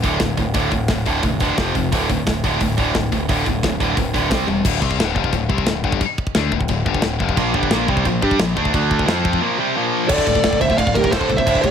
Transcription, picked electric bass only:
0, 0, Header, 1, 2, 480
1, 0, Start_track
1, 0, Key_signature, -1, "minor"
1, 0, Tempo, 341103
1, 781, Time_signature, 4, 2, 24, 8
1, 16475, End_track
2, 0, Start_track
2, 0, Title_t, "Picked electric bass"
2, 0, Program_c, 0, 34
2, 47, Note_on_c, 0, 26, 89
2, 242, Note_off_c, 0, 26, 0
2, 288, Note_on_c, 0, 26, 83
2, 483, Note_off_c, 0, 26, 0
2, 526, Note_on_c, 0, 26, 84
2, 722, Note_off_c, 0, 26, 0
2, 768, Note_on_c, 0, 26, 90
2, 964, Note_off_c, 0, 26, 0
2, 1013, Note_on_c, 0, 26, 91
2, 1207, Note_off_c, 0, 26, 0
2, 1244, Note_on_c, 0, 26, 90
2, 1441, Note_off_c, 0, 26, 0
2, 1496, Note_on_c, 0, 26, 87
2, 1689, Note_off_c, 0, 26, 0
2, 1737, Note_on_c, 0, 28, 88
2, 2120, Note_off_c, 0, 28, 0
2, 2224, Note_on_c, 0, 29, 81
2, 2414, Note_off_c, 0, 29, 0
2, 2460, Note_on_c, 0, 29, 84
2, 2652, Note_off_c, 0, 29, 0
2, 2716, Note_on_c, 0, 26, 98
2, 3092, Note_off_c, 0, 26, 0
2, 3189, Note_on_c, 0, 26, 94
2, 3377, Note_off_c, 0, 26, 0
2, 3425, Note_on_c, 0, 26, 85
2, 3615, Note_off_c, 0, 26, 0
2, 3676, Note_on_c, 0, 26, 84
2, 3862, Note_off_c, 0, 26, 0
2, 3908, Note_on_c, 0, 26, 88
2, 4097, Note_off_c, 0, 26, 0
2, 4155, Note_on_c, 0, 26, 85
2, 4341, Note_off_c, 0, 26, 0
2, 4402, Note_on_c, 0, 26, 85
2, 4586, Note_off_c, 0, 26, 0
2, 4628, Note_on_c, 0, 26, 99
2, 4817, Note_off_c, 0, 26, 0
2, 4873, Note_on_c, 0, 26, 90
2, 5060, Note_off_c, 0, 26, 0
2, 5108, Note_on_c, 0, 26, 87
2, 5297, Note_off_c, 0, 26, 0
2, 5346, Note_on_c, 0, 26, 90
2, 5536, Note_off_c, 0, 26, 0
2, 5586, Note_on_c, 0, 26, 83
2, 6057, Note_on_c, 0, 36, 80
2, 6078, Note_off_c, 0, 26, 0
2, 6250, Note_off_c, 0, 36, 0
2, 6293, Note_on_c, 0, 28, 80
2, 6487, Note_off_c, 0, 28, 0
2, 6538, Note_on_c, 0, 26, 97
2, 6764, Note_off_c, 0, 26, 0
2, 6778, Note_on_c, 0, 36, 104
2, 7004, Note_off_c, 0, 36, 0
2, 7010, Note_on_c, 0, 26, 93
2, 7239, Note_off_c, 0, 26, 0
2, 7267, Note_on_c, 0, 29, 107
2, 7488, Note_off_c, 0, 29, 0
2, 7501, Note_on_c, 0, 26, 86
2, 7722, Note_off_c, 0, 26, 0
2, 7730, Note_on_c, 0, 36, 89
2, 7959, Note_off_c, 0, 36, 0
2, 7991, Note_on_c, 0, 26, 74
2, 8210, Note_off_c, 0, 26, 0
2, 8216, Note_on_c, 0, 31, 81
2, 8442, Note_off_c, 0, 31, 0
2, 8946, Note_on_c, 0, 38, 99
2, 9166, Note_off_c, 0, 38, 0
2, 9177, Note_on_c, 0, 26, 81
2, 9401, Note_off_c, 0, 26, 0
2, 9412, Note_on_c, 0, 26, 86
2, 9639, Note_off_c, 0, 26, 0
2, 9646, Note_on_c, 0, 31, 98
2, 9875, Note_off_c, 0, 31, 0
2, 9895, Note_on_c, 0, 26, 88
2, 10120, Note_off_c, 0, 26, 0
2, 10137, Note_on_c, 0, 29, 89
2, 10361, Note_off_c, 0, 29, 0
2, 10371, Note_on_c, 0, 34, 101
2, 10598, Note_off_c, 0, 34, 0
2, 10607, Note_on_c, 0, 31, 101
2, 10835, Note_off_c, 0, 31, 0
2, 10854, Note_on_c, 0, 34, 107
2, 11079, Note_off_c, 0, 34, 0
2, 11091, Note_on_c, 0, 36, 111
2, 11317, Note_off_c, 0, 36, 0
2, 11334, Note_on_c, 0, 34, 86
2, 11559, Note_off_c, 0, 34, 0
2, 11581, Note_on_c, 0, 43, 99
2, 11803, Note_off_c, 0, 43, 0
2, 11816, Note_on_c, 0, 34, 90
2, 12040, Note_off_c, 0, 34, 0
2, 12061, Note_on_c, 0, 38, 95
2, 12283, Note_off_c, 0, 38, 0
2, 12294, Note_on_c, 0, 38, 102
2, 12742, Note_off_c, 0, 38, 0
2, 12773, Note_on_c, 0, 41, 102
2, 13222, Note_off_c, 0, 41, 0
2, 14204, Note_on_c, 0, 26, 99
2, 14360, Note_off_c, 0, 26, 0
2, 14447, Note_on_c, 0, 26, 94
2, 14602, Note_off_c, 0, 26, 0
2, 14694, Note_on_c, 0, 26, 90
2, 14846, Note_off_c, 0, 26, 0
2, 14929, Note_on_c, 0, 26, 98
2, 15083, Note_off_c, 0, 26, 0
2, 15176, Note_on_c, 0, 26, 100
2, 15328, Note_off_c, 0, 26, 0
2, 15418, Note_on_c, 0, 26, 93
2, 15569, Note_off_c, 0, 26, 0
2, 15650, Note_on_c, 0, 26, 99
2, 15804, Note_off_c, 0, 26, 0
2, 15894, Note_on_c, 0, 36, 90
2, 16046, Note_off_c, 0, 36, 0
2, 16136, Note_on_c, 0, 26, 97
2, 16288, Note_off_c, 0, 26, 0
2, 16382, Note_on_c, 0, 26, 94
2, 16475, Note_off_c, 0, 26, 0
2, 16475, End_track
0, 0, End_of_file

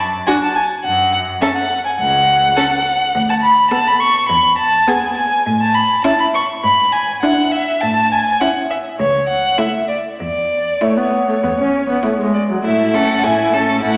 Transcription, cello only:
0, 0, Header, 1, 2, 480
1, 0, Start_track
1, 0, Key_signature, 3, "minor"
1, 0, Tempo, 576923
1, 698, Time_signature, 4, 2, 24, 8
1, 2612, Key_signature, 3, "major"
1, 5024, Tempo, 590551
1, 7904, Tempo, 610998
1, 10304, Tempo, 589391
1, 11391, End_track
2, 0, Start_track
2, 0, Title_t, "Cello"
2, 0, Program_c, 0, 42
2, 0, Note_on_c, 0, 42, 47
2, 146, Note_off_c, 0, 42, 0
2, 707, Note_on_c, 0, 42, 52
2, 1098, Note_off_c, 0, 42, 0
2, 1661, Note_on_c, 0, 37, 52
2, 2057, Note_off_c, 0, 37, 0
2, 2618, Note_on_c, 0, 38, 64
2, 2990, Note_off_c, 0, 38, 0
2, 3573, Note_on_c, 0, 40, 60
2, 3957, Note_off_c, 0, 40, 0
2, 4542, Note_on_c, 0, 45, 68
2, 4926, Note_off_c, 0, 45, 0
2, 5509, Note_on_c, 0, 44, 59
2, 5890, Note_off_c, 0, 44, 0
2, 6476, Note_on_c, 0, 45, 63
2, 6852, Note_off_c, 0, 45, 0
2, 7428, Note_on_c, 0, 37, 51
2, 7806, Note_off_c, 0, 37, 0
2, 8391, Note_on_c, 0, 40, 48
2, 8772, Note_off_c, 0, 40, 0
2, 9355, Note_on_c, 0, 40, 39
2, 9729, Note_off_c, 0, 40, 0
2, 10313, Note_on_c, 0, 45, 42
2, 10737, Note_off_c, 0, 45, 0
2, 10797, Note_on_c, 0, 45, 38
2, 11216, Note_off_c, 0, 45, 0
2, 11274, Note_on_c, 0, 45, 40
2, 11391, Note_off_c, 0, 45, 0
2, 11391, End_track
0, 0, End_of_file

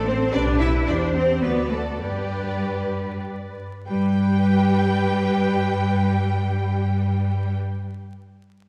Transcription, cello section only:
0, 0, Header, 1, 2, 480
1, 0, Start_track
1, 0, Key_signature, 1, "major"
1, 0, Tempo, 534283
1, 305, Time_signature, 3, 2, 24, 8
1, 788, Tempo, 569801
1, 1748, Tempo, 619835
1, 6913, End_track
2, 0, Start_track
2, 0, Title_t, "Cello section"
2, 0, Program_c, 0, 48
2, 64, Note_on_c, 0, 60, 108
2, 298, Note_on_c, 0, 62, 112
2, 303, Note_off_c, 0, 60, 0
2, 534, Note_on_c, 0, 64, 103
2, 542, Note_off_c, 0, 62, 0
2, 780, Note_on_c, 0, 62, 107
2, 782, Note_off_c, 0, 64, 0
2, 1012, Note_on_c, 0, 60, 100
2, 1015, Note_off_c, 0, 62, 0
2, 1246, Note_off_c, 0, 60, 0
2, 1246, Note_on_c, 0, 59, 100
2, 1484, Note_on_c, 0, 57, 88
2, 1494, Note_off_c, 0, 59, 0
2, 1551, Note_off_c, 0, 57, 0
2, 1736, Note_on_c, 0, 55, 76
2, 2669, Note_off_c, 0, 55, 0
2, 3181, Note_on_c, 0, 55, 106
2, 6037, Note_off_c, 0, 55, 0
2, 6913, End_track
0, 0, End_of_file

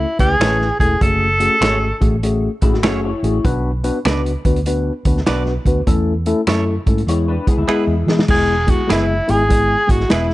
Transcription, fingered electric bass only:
0, 0, Header, 1, 3, 480
1, 0, Start_track
1, 0, Tempo, 605449
1, 806, Time_signature, 4, 2, 24, 8
1, 8197, End_track
2, 0, Start_track
2, 0, Title_t, "Fingered electric bass"
2, 0, Program_c, 0, 33
2, 150, Note_on_c, 0, 37, 79
2, 279, Note_off_c, 0, 37, 0
2, 315, Note_on_c, 0, 33, 78
2, 552, Note_off_c, 0, 33, 0
2, 628, Note_on_c, 0, 28, 84
2, 758, Note_off_c, 0, 28, 0
2, 804, Note_on_c, 0, 30, 96
2, 1164, Note_off_c, 0, 30, 0
2, 1274, Note_on_c, 0, 32, 86
2, 1513, Note_off_c, 0, 32, 0
2, 1598, Note_on_c, 0, 33, 84
2, 1958, Note_off_c, 0, 33, 0
2, 2076, Note_on_c, 0, 33, 83
2, 2238, Note_off_c, 0, 33, 0
2, 2238, Note_on_c, 0, 30, 86
2, 2476, Note_off_c, 0, 30, 0
2, 2559, Note_on_c, 0, 33, 82
2, 2686, Note_off_c, 0, 33, 0
2, 2729, Note_on_c, 0, 35, 102
2, 3089, Note_off_c, 0, 35, 0
2, 3212, Note_on_c, 0, 37, 80
2, 3445, Note_off_c, 0, 37, 0
2, 3527, Note_on_c, 0, 38, 79
2, 3885, Note_off_c, 0, 38, 0
2, 4005, Note_on_c, 0, 38, 86
2, 4131, Note_off_c, 0, 38, 0
2, 4187, Note_on_c, 0, 35, 88
2, 4415, Note_off_c, 0, 35, 0
2, 4480, Note_on_c, 0, 38, 73
2, 4608, Note_off_c, 0, 38, 0
2, 4652, Note_on_c, 0, 40, 92
2, 5012, Note_off_c, 0, 40, 0
2, 5131, Note_on_c, 0, 42, 83
2, 5365, Note_off_c, 0, 42, 0
2, 5441, Note_on_c, 0, 44, 89
2, 5568, Note_off_c, 0, 44, 0
2, 5605, Note_on_c, 0, 40, 90
2, 5841, Note_off_c, 0, 40, 0
2, 6005, Note_on_c, 0, 38, 81
2, 6069, Note_off_c, 0, 38, 0
2, 6241, Note_on_c, 0, 40, 83
2, 6361, Note_off_c, 0, 40, 0
2, 6393, Note_on_c, 0, 52, 87
2, 6523, Note_off_c, 0, 52, 0
2, 6565, Note_on_c, 0, 28, 101
2, 6927, Note_off_c, 0, 28, 0
2, 7053, Note_on_c, 0, 30, 87
2, 7285, Note_off_c, 0, 30, 0
2, 7368, Note_on_c, 0, 32, 85
2, 7724, Note_off_c, 0, 32, 0
2, 7842, Note_on_c, 0, 32, 77
2, 7967, Note_off_c, 0, 32, 0
2, 8012, Note_on_c, 0, 28, 84
2, 8197, Note_off_c, 0, 28, 0
2, 8197, End_track
3, 0, Start_track
3, 0, Title_t, "Muted fingered electric bass strokes"
3, 5925, Note_on_c, 9, 29, 42
3, 6005, Note_off_c, 9, 29, 0
3, 6089, Note_on_c, 9, 29, 41
3, 6168, Note_off_c, 9, 29, 0
3, 8197, End_track
0, 0, End_of_file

